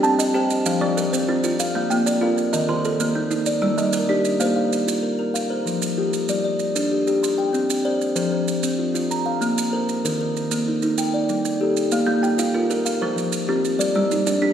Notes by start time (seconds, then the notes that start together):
Already playing: C4 G5
0.03 C4 A5, maracas
0.19 D#5, maracas
0.34 G4 C5 G5
0.50 maracas
0.66 F3 C5 F5, maracas
0.81 F3 D5
0.97 A#4, maracas
1.13 C4 C5, maracas
1.28 C4 F4
1.44 F4, maracas
1.60 F5, maracas
1.75 A#3 F5
1.90 A#3 G5, maracas
2.06 D5, maracas
2.21 F4 A#4 F5
2.38 maracas
2.53 D#3 A#4 D#5, maracas
2.69 D#3 C5
2.85 A4, maracas
3.00 A#3 A#4, maracas
3.15 A#3 D#4
3.31 D#4, maracas
3.46 D5, maracas
3.62 G3 D5
3.78 G3 D#5, maracas
3.93 A#4, maracas
4.09 D4 G4 D5
4.25 maracas
4.40 A#3 C5 F5, maracas
4.56 F5
4.73 maracas
4.87 F4, maracas
5.03 A#4
5.19 A#4
5.34 F5, maracas
5.50 C5
5.66 F3, maracas
5.82 maracas
5.98 F4 G4
6.13 maracas
6.29 G3 D5, maracas
6.45 D5
6.59 maracas
6.75 D4, maracas
6.92 G4
7.07 G4, maracas
7.23 C6, maracas
7.38 G5
7.53 C4, maracas
7.70 maracas
7.85 C5 D5
8.01 maracas
8.16 F3 C5, maracas
8.32 C5
8.48 maracas
8.63 C4, maracas
8.79 F4
8.94 F4, maracas
9.11 A#5, maracas
9.26 F5
9.41 A#3, maracas
9.58 maracas
9.73 A#4 C5
9.89 maracas
10.05 D#3 A#4, maracas
10.21 A#4
10.37 maracas
10.51 A#3, maracas
10.68 D#4
10.82 D#4, maracas
10.98 G5, maracas
11.14 D5
11.29 G3, maracas
11.45 maracas
11.61 G4 A4
11.77 maracas
11.91 A#3 F5, maracas
12.07 A#3 F5
12.23 G5, maracas
12.38 F4 F5, maracas
12.54 F4 A#4
12.70 A#4, maracas
12.85 F5, maracas
13.01 F3 C5
13.16 F3, maracas
13.32 maracas
13.48 C4 F4 G4
13.65 maracas
13.79 G3 D5, maracas
13.95 G3 D5
14.11 D#4, maracas
14.27 D4 D5, maracas
14.42 D4 G4